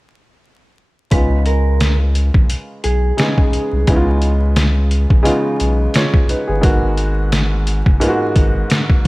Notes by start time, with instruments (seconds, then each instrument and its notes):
1.11 sub bass C#2, upright piano C#3 G#3 B3 D#4 F4, clean electric guitar B4, kick, closed hi-hat
1.46 clean electric guitar A#4, closed hi-hat
1.80 snare, closed hi-hat
2.15 closed hi-hat
2.34 sub bass A#1, kick
2.50 closed hi-hat
2.84 sub bass B1, clean electric guitar G#4, closed hi-hat
3.17 upright piano C#3 G#3 B3 D#4 G#4, snare, closed hi-hat
3.38 kick
3.53 closed hi-hat
3.73 sub bass C2
3.87 sub bass C#2, upright piano C#3 G#3 B3 D#4 E4, kick, closed hi-hat
3.96 upright piano F4
4.22 closed hi-hat
4.56 snare, closed hi-hat
4.91 closed hi-hat
5.10 sub bass A#1, kick
5.23 upright piano C#3 G#3 B3 D#4 F4, closed hi-hat
5.60 sub bass B1, closed hi-hat
5.94 upright piano F4 C#5, snare, closed hi-hat
6.14 kick
6.29 upright piano D#4 B4, closed hi-hat
6.48 sub bass G1, upright piano B3 G#4
6.61 sub bass G#1, upright piano G#2 G#3 A#3 B3 F#4, kick, closed hi-hat
6.97 closed hi-hat
7.32 snare, closed hi-hat
7.67 closed hi-hat
7.86 sub bass F#1, kick
8.00 upright piano G#2 G#3 A#3 B3 F4, closed hi-hat
8.09 upright piano F#4
8.36 sub bass G#1, kick, closed hi-hat
8.70 snare, closed hi-hat
8.90 kick